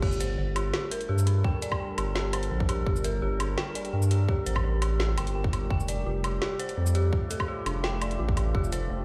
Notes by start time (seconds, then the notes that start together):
0.02 G1 G3 D4 G4 A4 A#4, kick, crash
0.12 shaker
0.20 C5, closed hi-hat, shaker
0.38 G1 C5
0.56 G4, closed hi-hat, low woodblock
0.74 G4, snare
0.91 A#4, closed hi-hat
1.01 closed hi-hat
1.09 G2 G4
1.18 shaker
1.27 D4, closed hi-hat
1.44 G5, kick
1.62 D5, closed hi-hat, shaker
1.72 kick, low woodblock
1.80 G5
1.98 G1 G4, closed hi-hat, low woodblock
2.15 G4, snare
2.33 C5, closed hi-hat, low woodblock
2.43 closed hi-hat
2.51 A#1 C5
2.60 kick
2.69 G4, closed hi-hat, low woodblock
2.87 G1 G4, kick
2.96 shaker
3.04 A#4, closed hi-hat, shaker
3.22 G1 G4
3.40 D4, closed hi-hat, low woodblock
3.58 G5, snare
3.75 D5, closed hi-hat
3.85 closed hi-hat
3.93 G2 G5
4.02 shaker
4.11 G4, closed hi-hat
4.29 G4, kick
4.46 A1 C5, closed hi-hat, shaker
4.56 kick, low woodblock
4.64 C5
4.82 G4, closed hi-hat, low woodblock
5.00 G4, snare
5.17 G1 G5, closed hi-hat, low woodblock
5.27 closed hi-hat
5.35 G5
5.44 kick
5.53 G4, closed hi-hat, low woodblock
5.70 F1 A3 F4 G5, kick
5.80 shaker
5.88 D5, closed hi-hat, shaker
6.06 F1 F4
6.24 G4, closed hi-hat, low woodblock
6.42 G4, snare
6.59 C5, closed hi-hat
6.69 closed hi-hat
6.77 F2 C5
6.87 shaker
6.95 G4, closed hi-hat
7.13 G4, kick
7.30 A4, closed hi-hat, shaker
7.40 kick, low woodblock
7.48 G4
7.66 F1 D4, closed hi-hat, low woodblock
7.84 G5, snare
8.02 D5, closed hi-hat, low woodblock
8.11 closed hi-hat
8.19 A1 F4
8.29 kick
8.37 G4, closed hi-hat, low woodblock
8.55 F1 G4, kick
8.64 shaker
8.72 C5, closed hi-hat, shaker
8.90 F1 C5